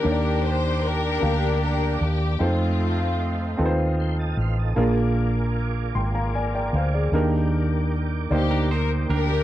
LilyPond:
<<
  \new Staff \with { instrumentName = "Tonewheel organ" } { \time 6/8 \key ees \major \tempo 4. = 51 << { r2. | r2 <g'' c'''>16 <ees'' a''>16 <c'' f''>16 <a' ees''>16~ | <a' ees''>16 r2 r8. | r2. | } \\ { <bes d' g' d''>2. | <aes a ees' f' c''>2. | <bes f' aes' c'' d''>2. | <bes g' d''>2. | } >> }
  \new Staff \with { instrumentName = "Grand piano" } { \time 6/8 \key ees \major << { r2. | r2. | r4. <g'' c'''>16 <f'' bes''>16 <d'' aes''>16 <d'' g''>16 <c'' f''>16 <aes' d''>16~ | <aes' d''>16 r2 r8. | } \\ { <bes d' g' bes' des'' d''>4 r8 <bes d' g' bes' f''>4 r8 | <c' ees' f' a' c''>4 r8 <c' ees' f' a' ces'' c''>4 r8 | <bes d' f' aes' bes'>4 r2 | <bes d' ees' g' bes'>4 r8 <bes ees' g' c'' d''>4 r8 | } >> }
  \new Staff \with { instrumentName = "Grand piano" } { \clef bass \time 6/8 \key ees \major ees4. r4. | r2. | bes,4. r4. | ees4. r4. | }
  \new Staff \with { instrumentName = "String section" } { \time 6/8 \key ees \major << { bes'8 c''8 bes'4 bes'8 g'8 | f'4. r4. | r2. | r4. g'8 bes'8 bes'8 | } \\ { <d' g'>4 <d' g'>4. r8 | <a c'>4. r4. | r2. | r2 r8 <d' g'>8 | } >> }
  \new Staff \with { instrumentName = "Clean electric guitar" } { \time 6/8 \key ees \major r2. | r2. | r2. | r4. r16 <d' bes'>16 <ees' c''>8 <d' bes'>16 <bes g'>16 | }
  \new Staff \with { instrumentName = "Fingered electric bass" } { \clef bass \time 6/8 \key ees \major ees,4. d,4 ees,8 | f,4. ees,4 a,,8 | bes,,4. aes,,4 d,8 | ees,4. d,4 d,8 | }
>>